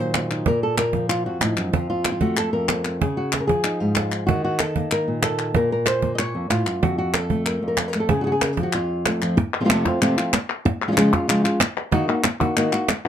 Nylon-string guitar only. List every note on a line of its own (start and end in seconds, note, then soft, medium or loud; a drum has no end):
0.00 0.44 A#2 soft
0.00 0.44 D#3 medium
0.00 0.45 F#3 medium
0.00 0.46 C5 medium
0.15 0.30 D#4 soft
0.32 0.45 D#4 soft
0.46 1.26 A#2 medium
0.46 0.63 A#4 medium
0.63 0.78 A4 medium
0.78 1.09 A#4 medium
0.94 2.09 F3 medium
1.09 1.25 F4 medium
1.26 1.41 F2 soft
1.26 1.42 F#4 medium
1.42 1.58 A2 medium
1.42 1.74 D#4 medium
1.58 1.73 F#2 medium
1.73 2.53 F2 medium
1.73 1.89 F4 medium
1.90 2.11 F4 medium
2.06 2.12 F#4 medium
2.12 2.37 F4 medium
2.21 2.99 A3 medium
2.21 2.38 F#4 medium
2.38 2.52 A4 medium
2.53 3.01 F2 medium
2.53 3.01 A#4 medium
2.71 2.85 C4 soft
2.86 2.99 C4 soft
3.01 3.49 C#3 medium
3.01 3.33 G#4 medium
3.17 3.33 F#4 medium
3.34 3.40 G#4 medium
3.40 3.47 A#4 medium
3.47 4.26 F3 medium
3.47 3.80 G#4 medium
3.64 4.12 D#4 medium
3.80 4.26 G#2 medium
3.80 3.95 F4 medium
3.96 4.26 F4 medium
4.27 5.56 D#3 medium
4.27 4.43 F#4 medium
4.44 4.60 F#4 medium
4.60 4.92 A4 medium
4.76 5.54 A#3 medium
4.92 5.23 A#4 medium
5.08 5.54 A#2 medium
5.23 5.55 A4 medium
5.55 6.35 A#2 medium
5.55 5.71 A#4 loud
5.72 6.20 A#4 medium
5.87 6.15 C5 medium
6.03 6.81 A#3 medium
6.15 6.19 D#5 medium
6.19 6.50 C#5 medium
6.35 6.50 F2 medium
6.50 6.66 A2 medium
6.50 6.83 F4 medium
6.67 6.83 F#2 medium
6.82 7.61 F2 medium
6.82 6.97 F#4 medium
6.98 7.15 F#4 medium
7.15 7.46 A4 medium
7.30 7.94 A3 medium
7.46 7.62 A#4 medium
7.63 8.10 F2 medium
7.68 7.78 A#4 medium
7.78 7.88 A4 medium
7.88 7.99 A#4 medium
7.95 8.09 A3 soft
8.00 8.10 A4 medium
8.10 8.58 C#3 medium
8.10 8.23 G#4 medium
8.21 8.24 F#4 medium
8.21 8.31 G#4 medium
8.27 8.32 F#4 medium
8.32 8.42 G#4 medium
8.42 8.53 A#4 medium
8.53 8.74 G#4 medium
8.59 8.72 F3 medium
8.63 8.74 F#4 medium
8.75 9.36 F2 medium
8.75 9.38 F4 medium
9.07 9.37 A3 soft
9.22 9.36 F3 medium
9.37 muted nylon-string guitar stroke medium
9.60 9.63 C3 soft
9.60 9.64 F3 soft
9.60 9.64 A3 medium
9.60 9.65 C4 medium
9.60 9.65 F4 soft
9.65 9.68 C3 medium
9.65 9.69 F3 medium
9.65 9.69 A3 medium
9.65 9.69 C4 medium
9.65 9.69 F4 medium
9.69 9.85 F2 medium
9.69 9.85 C3 medium
9.69 9.85 F3 medium
9.69 9.85 A3 medium
9.69 9.85 C4 medium
9.69 9.84 F4 medium
9.85 10.01 F3 soft
9.85 10.01 A3 medium
9.85 10.01 C4 medium
9.85 10.01 F4 medium
10.01 10.17 F2 medium
10.01 10.17 C3 medium
10.01 10.17 F3 medium
10.01 10.17 A3 medium
10.01 10.17 C4 medium
10.01 10.16 F4 medium
10.17 10.32 F3 soft
10.17 10.33 A3 soft
10.17 10.33 C4 medium
10.17 10.33 F4 medium
10.33 muted nylon-string guitar stroke medium
10.65 muted nylon-string guitar stroke medium
10.88 10.91 F3 soft
10.88 10.91 G#3 medium
10.88 10.92 C#4 medium
10.88 10.92 F4 medium
10.92 10.96 F3 medium
10.92 10.96 G#3 medium
10.92 10.96 C#4 medium
10.92 10.96 F4 medium
10.97 11.12 C#3 medium
10.97 11.12 F3 medium
10.97 11.12 G#3 medium
10.97 11.12 C#4 medium
10.97 11.11 F4 medium
11.12 11.28 G#3 soft
11.12 11.28 C#4 medium
11.12 11.28 F4 medium
11.28 11.44 C#3 medium
11.28 11.44 F3 medium
11.28 11.44 G#3 medium
11.28 11.44 C#4 medium
11.28 11.43 F4 medium
11.44 11.60 G#3 soft
11.44 11.60 C#4 soft
11.44 11.60 F4 medium
11.61 muted nylon-string guitar stroke medium
11.91 12.07 D#3 medium
11.91 12.08 A#3 medium
11.91 12.07 D#4 medium
11.91 12.07 F#4 medium
12.08 12.23 A#3 soft
12.08 12.23 D#4 medium
12.08 12.24 F#4 medium
12.24 muted nylon-string guitar stroke medium
12.40 12.56 A#3 soft
12.40 12.56 D#4 medium
12.40 12.56 F#4 medium
12.57 12.72 D#3 medium
12.57 12.72 A#3 medium
12.57 12.72 D#4 medium
12.57 12.71 F#4 medium
12.72 12.89 A#3 soft
12.72 12.88 D#4 soft
12.72 12.88 F#4 medium
12.89 muted nylon-string guitar stroke medium
13.05 13.08 F#4 medium